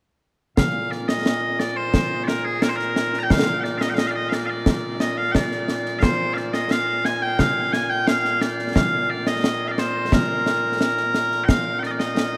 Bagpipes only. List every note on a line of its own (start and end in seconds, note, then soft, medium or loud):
0.57 12.37 A#2 medium
0.57 0.91 F5 medium
0.91 1.08 D5 medium
1.08 1.59 D#5 medium
1.59 1.76 D5 medium
1.76 2.24 C5 medium
2.24 2.28 D5 medium
2.28 2.45 A#4 medium
2.45 2.62 G#4 medium
2.62 2.69 A#4 medium
2.69 2.76 C5 medium
2.76 3.19 A#4 medium
3.19 3.23 A#5 medium
3.23 3.30 G5 medium
3.30 3.60 F5 loud
3.60 3.78 D5 medium
3.60 3.63 G5 medium
3.78 3.89 D#5 medium
3.78 3.81 F5 medium
3.89 3.94 G5 medium
3.94 3.98 F5 medium
3.98 4.07 D#5 loud
4.07 4.16 D5 medium
4.07 4.11 F5 medium
4.16 4.29 D#5 medium
4.29 4.33 F5 medium
4.33 4.46 D5 medium
4.46 5.00 D5 medium
4.46 4.50 F5 medium
5.00 5.17 D#5 medium
5.17 5.32 F5 medium
5.32 5.99 D5 medium
5.32 5.35 G5 medium
5.99 6.34 C5 medium
5.99 6.03 F5 medium
6.34 6.54 D5 medium
6.34 6.37 F5 medium
6.54 6.71 D#5 medium
6.71 7.05 F5 loud
7.05 7.22 G#5 loud
7.22 7.39 G5 medium
7.39 7.73 F5 loud
7.73 7.90 G#5 medium
7.90 8.07 G5 medium
8.07 8.41 F5 loud
8.41 8.76 D5 medium
8.76 9.10 F5 medium
9.10 9.27 D5 medium
9.27 9.67 D#5 medium
9.67 9.79 D5 medium
9.67 9.71 F5 medium
9.79 10.13 C5 medium
10.13 11.44 A#4 medium
11.44 11.49 G5 medium
11.49 11.79 F5 medium
11.79 11.87 D5 medium
11.79 11.83 G5 medium
11.87 11.91 D#5 medium
11.91 11.99 D5 medium
11.99 12.37 D#5 medium